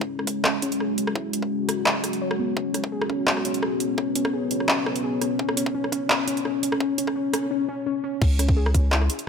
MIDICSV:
0, 0, Header, 1, 5, 480
1, 0, Start_track
1, 0, Tempo, 352941
1, 1575, Time_signature, 4, 2, 24, 8
1, 12628, End_track
2, 0, Start_track
2, 0, Title_t, "Ambient pad"
2, 0, Program_c, 0, 92
2, 0, Note_on_c, 0, 56, 82
2, 0, Note_on_c, 0, 61, 87
2, 0, Note_on_c, 0, 64, 92
2, 0, Note_on_c, 0, 66, 95
2, 0, Note_on_c, 0, 73, 96
2, 149, Note_off_c, 0, 64, 0
2, 3492, Note_off_c, 0, 73, 0
2, 3494, Note_off_c, 0, 56, 0
2, 3499, Note_on_c, 0, 59, 75
2, 4116, Note_on_c, 0, 73, 77
2, 10208, Note_off_c, 0, 66, 0
2, 10215, Note_off_c, 0, 73, 0
2, 10216, Note_off_c, 0, 61, 0
2, 10217, Note_off_c, 0, 59, 0
2, 12628, End_track
3, 0, Start_track
3, 0, Title_t, "Synth pluck"
3, 0, Program_c, 1, 84
3, 613, Note_on_c, 1, 61, 82
3, 831, Note_off_c, 1, 61, 0
3, 851, Note_on_c, 1, 61, 101
3, 1082, Note_off_c, 1, 61, 0
3, 1093, Note_on_c, 1, 68, 74
3, 1311, Note_off_c, 1, 68, 0
3, 1333, Note_on_c, 1, 61, 74
3, 1563, Note_off_c, 1, 61, 0
3, 1572, Note_on_c, 1, 64, 102
3, 2511, Note_off_c, 1, 64, 0
3, 3013, Note_on_c, 1, 73, 76
3, 3243, Note_off_c, 1, 73, 0
3, 3252, Note_on_c, 1, 59, 73
3, 3397, Note_off_c, 1, 59, 0
3, 3494, Note_on_c, 1, 61, 76
3, 3712, Note_off_c, 1, 61, 0
3, 3732, Note_on_c, 1, 61, 91
3, 3962, Note_off_c, 1, 61, 0
3, 3974, Note_on_c, 1, 68, 72
3, 4192, Note_off_c, 1, 68, 0
3, 4209, Note_on_c, 1, 61, 69
3, 4434, Note_off_c, 1, 61, 0
3, 4452, Note_on_c, 1, 61, 76
3, 4671, Note_off_c, 1, 61, 0
3, 4694, Note_on_c, 1, 61, 94
3, 4923, Note_off_c, 1, 61, 0
3, 4932, Note_on_c, 1, 68, 70
3, 5151, Note_off_c, 1, 68, 0
3, 5172, Note_on_c, 1, 61, 68
3, 5395, Note_off_c, 1, 61, 0
3, 5411, Note_on_c, 1, 61, 79
3, 5631, Note_off_c, 1, 61, 0
3, 5654, Note_on_c, 1, 61, 94
3, 5883, Note_off_c, 1, 61, 0
3, 5896, Note_on_c, 1, 68, 74
3, 6113, Note_off_c, 1, 68, 0
3, 6139, Note_on_c, 1, 61, 70
3, 6359, Note_off_c, 1, 61, 0
3, 6374, Note_on_c, 1, 61, 79
3, 6592, Note_off_c, 1, 61, 0
3, 6615, Note_on_c, 1, 61, 100
3, 6844, Note_off_c, 1, 61, 0
3, 6854, Note_on_c, 1, 68, 72
3, 7072, Note_off_c, 1, 68, 0
3, 7096, Note_on_c, 1, 61, 72
3, 7317, Note_off_c, 1, 61, 0
3, 7336, Note_on_c, 1, 61, 83
3, 7553, Note_off_c, 1, 61, 0
3, 7573, Note_on_c, 1, 61, 97
3, 7796, Note_off_c, 1, 61, 0
3, 7813, Note_on_c, 1, 61, 84
3, 8031, Note_off_c, 1, 61, 0
3, 8052, Note_on_c, 1, 61, 100
3, 8276, Note_off_c, 1, 61, 0
3, 8295, Note_on_c, 1, 61, 82
3, 8513, Note_off_c, 1, 61, 0
3, 8533, Note_on_c, 1, 61, 103
3, 8756, Note_off_c, 1, 61, 0
3, 8774, Note_on_c, 1, 61, 81
3, 8992, Note_off_c, 1, 61, 0
3, 9014, Note_on_c, 1, 61, 101
3, 9237, Note_off_c, 1, 61, 0
3, 9255, Note_on_c, 1, 61, 86
3, 9472, Note_off_c, 1, 61, 0
3, 9494, Note_on_c, 1, 61, 84
3, 9712, Note_off_c, 1, 61, 0
3, 9733, Note_on_c, 1, 61, 88
3, 9951, Note_off_c, 1, 61, 0
3, 9972, Note_on_c, 1, 61, 85
3, 10191, Note_off_c, 1, 61, 0
3, 10210, Note_on_c, 1, 61, 87
3, 10430, Note_off_c, 1, 61, 0
3, 10452, Note_on_c, 1, 61, 86
3, 10671, Note_off_c, 1, 61, 0
3, 10694, Note_on_c, 1, 61, 85
3, 10912, Note_off_c, 1, 61, 0
3, 10932, Note_on_c, 1, 61, 85
3, 11151, Note_off_c, 1, 61, 0
3, 11175, Note_on_c, 1, 61, 85
3, 11392, Note_off_c, 1, 61, 0
3, 11412, Note_on_c, 1, 61, 102
3, 11642, Note_off_c, 1, 61, 0
3, 11650, Note_on_c, 1, 68, 79
3, 11870, Note_off_c, 1, 68, 0
3, 11893, Note_on_c, 1, 61, 77
3, 12123, Note_off_c, 1, 61, 0
3, 12130, Note_on_c, 1, 64, 101
3, 12628, Note_off_c, 1, 64, 0
3, 12628, End_track
4, 0, Start_track
4, 0, Title_t, "808-style bass"
4, 0, Program_c, 2, 38
4, 11173, Note_on_c, 2, 37, 93
4, 11876, Note_off_c, 2, 37, 0
4, 11893, Note_on_c, 2, 37, 99
4, 12356, Note_off_c, 2, 37, 0
4, 12628, End_track
5, 0, Start_track
5, 0, Title_t, "Drums"
5, 18, Note_on_c, 9, 36, 107
5, 154, Note_off_c, 9, 36, 0
5, 259, Note_on_c, 9, 37, 50
5, 371, Note_on_c, 9, 36, 62
5, 371, Note_on_c, 9, 42, 67
5, 395, Note_off_c, 9, 37, 0
5, 507, Note_off_c, 9, 36, 0
5, 507, Note_off_c, 9, 42, 0
5, 606, Note_on_c, 9, 37, 74
5, 606, Note_on_c, 9, 39, 120
5, 742, Note_off_c, 9, 37, 0
5, 742, Note_off_c, 9, 39, 0
5, 848, Note_on_c, 9, 42, 79
5, 979, Note_off_c, 9, 42, 0
5, 979, Note_on_c, 9, 42, 38
5, 1093, Note_on_c, 9, 37, 52
5, 1115, Note_off_c, 9, 42, 0
5, 1229, Note_off_c, 9, 37, 0
5, 1331, Note_on_c, 9, 42, 66
5, 1460, Note_on_c, 9, 37, 75
5, 1467, Note_off_c, 9, 42, 0
5, 1571, Note_on_c, 9, 36, 119
5, 1596, Note_off_c, 9, 37, 0
5, 1707, Note_off_c, 9, 36, 0
5, 1814, Note_on_c, 9, 42, 75
5, 1938, Note_on_c, 9, 36, 62
5, 1950, Note_off_c, 9, 42, 0
5, 2074, Note_off_c, 9, 36, 0
5, 2294, Note_on_c, 9, 37, 73
5, 2294, Note_on_c, 9, 42, 64
5, 2430, Note_off_c, 9, 37, 0
5, 2430, Note_off_c, 9, 42, 0
5, 2532, Note_on_c, 9, 39, 121
5, 2668, Note_off_c, 9, 39, 0
5, 2771, Note_on_c, 9, 37, 48
5, 2771, Note_on_c, 9, 42, 77
5, 2899, Note_off_c, 9, 42, 0
5, 2899, Note_on_c, 9, 42, 35
5, 2907, Note_off_c, 9, 37, 0
5, 3035, Note_off_c, 9, 42, 0
5, 3139, Note_on_c, 9, 37, 75
5, 3275, Note_off_c, 9, 37, 0
5, 3490, Note_on_c, 9, 36, 116
5, 3626, Note_off_c, 9, 36, 0
5, 3732, Note_on_c, 9, 37, 49
5, 3732, Note_on_c, 9, 42, 74
5, 3858, Note_on_c, 9, 36, 102
5, 3868, Note_off_c, 9, 37, 0
5, 3868, Note_off_c, 9, 42, 0
5, 3994, Note_off_c, 9, 36, 0
5, 4101, Note_on_c, 9, 37, 75
5, 4211, Note_on_c, 9, 36, 60
5, 4237, Note_off_c, 9, 37, 0
5, 4347, Note_off_c, 9, 36, 0
5, 4452, Note_on_c, 9, 39, 119
5, 4582, Note_on_c, 9, 37, 50
5, 4588, Note_off_c, 9, 39, 0
5, 4692, Note_on_c, 9, 42, 75
5, 4718, Note_off_c, 9, 37, 0
5, 4818, Note_off_c, 9, 42, 0
5, 4818, Note_on_c, 9, 42, 35
5, 4931, Note_on_c, 9, 37, 74
5, 4954, Note_off_c, 9, 42, 0
5, 5067, Note_off_c, 9, 37, 0
5, 5171, Note_on_c, 9, 42, 64
5, 5307, Note_off_c, 9, 42, 0
5, 5410, Note_on_c, 9, 37, 52
5, 5411, Note_on_c, 9, 36, 113
5, 5546, Note_off_c, 9, 37, 0
5, 5547, Note_off_c, 9, 36, 0
5, 5650, Note_on_c, 9, 42, 75
5, 5778, Note_on_c, 9, 37, 80
5, 5779, Note_on_c, 9, 36, 57
5, 5786, Note_off_c, 9, 42, 0
5, 5914, Note_off_c, 9, 37, 0
5, 5915, Note_off_c, 9, 36, 0
5, 6131, Note_on_c, 9, 42, 62
5, 6260, Note_on_c, 9, 37, 51
5, 6267, Note_off_c, 9, 42, 0
5, 6374, Note_on_c, 9, 39, 113
5, 6396, Note_off_c, 9, 37, 0
5, 6510, Note_off_c, 9, 39, 0
5, 6615, Note_on_c, 9, 37, 78
5, 6740, Note_on_c, 9, 42, 36
5, 6751, Note_off_c, 9, 37, 0
5, 6876, Note_off_c, 9, 42, 0
5, 7093, Note_on_c, 9, 37, 52
5, 7093, Note_on_c, 9, 42, 63
5, 7229, Note_off_c, 9, 37, 0
5, 7229, Note_off_c, 9, 42, 0
5, 7335, Note_on_c, 9, 36, 112
5, 7461, Note_on_c, 9, 37, 80
5, 7471, Note_off_c, 9, 36, 0
5, 7577, Note_on_c, 9, 42, 79
5, 7597, Note_off_c, 9, 37, 0
5, 7702, Note_on_c, 9, 36, 102
5, 7713, Note_off_c, 9, 42, 0
5, 7838, Note_off_c, 9, 36, 0
5, 7944, Note_on_c, 9, 37, 54
5, 8055, Note_on_c, 9, 36, 60
5, 8058, Note_on_c, 9, 42, 67
5, 8080, Note_off_c, 9, 37, 0
5, 8191, Note_off_c, 9, 36, 0
5, 8194, Note_off_c, 9, 42, 0
5, 8296, Note_on_c, 9, 39, 115
5, 8432, Note_off_c, 9, 39, 0
5, 8535, Note_on_c, 9, 42, 77
5, 8665, Note_off_c, 9, 42, 0
5, 8665, Note_on_c, 9, 42, 37
5, 8775, Note_on_c, 9, 37, 55
5, 8801, Note_off_c, 9, 42, 0
5, 8911, Note_off_c, 9, 37, 0
5, 9017, Note_on_c, 9, 42, 65
5, 9142, Note_on_c, 9, 37, 82
5, 9153, Note_off_c, 9, 42, 0
5, 9254, Note_on_c, 9, 36, 115
5, 9278, Note_off_c, 9, 37, 0
5, 9390, Note_off_c, 9, 36, 0
5, 9495, Note_on_c, 9, 42, 81
5, 9621, Note_on_c, 9, 36, 59
5, 9625, Note_on_c, 9, 37, 58
5, 9631, Note_off_c, 9, 42, 0
5, 9757, Note_off_c, 9, 36, 0
5, 9761, Note_off_c, 9, 37, 0
5, 9976, Note_on_c, 9, 37, 84
5, 9976, Note_on_c, 9, 42, 68
5, 10112, Note_off_c, 9, 37, 0
5, 10112, Note_off_c, 9, 42, 0
5, 11173, Note_on_c, 9, 36, 119
5, 11174, Note_on_c, 9, 49, 102
5, 11309, Note_off_c, 9, 36, 0
5, 11310, Note_off_c, 9, 49, 0
5, 11414, Note_on_c, 9, 37, 56
5, 11414, Note_on_c, 9, 42, 83
5, 11541, Note_on_c, 9, 36, 104
5, 11550, Note_off_c, 9, 37, 0
5, 11550, Note_off_c, 9, 42, 0
5, 11677, Note_off_c, 9, 36, 0
5, 11780, Note_on_c, 9, 37, 84
5, 11893, Note_on_c, 9, 36, 63
5, 11894, Note_on_c, 9, 42, 70
5, 11916, Note_off_c, 9, 37, 0
5, 12029, Note_off_c, 9, 36, 0
5, 12030, Note_off_c, 9, 42, 0
5, 12132, Note_on_c, 9, 39, 118
5, 12260, Note_on_c, 9, 37, 55
5, 12268, Note_off_c, 9, 39, 0
5, 12371, Note_on_c, 9, 42, 83
5, 12396, Note_off_c, 9, 37, 0
5, 12497, Note_off_c, 9, 42, 0
5, 12497, Note_on_c, 9, 42, 41
5, 12628, Note_off_c, 9, 42, 0
5, 12628, End_track
0, 0, End_of_file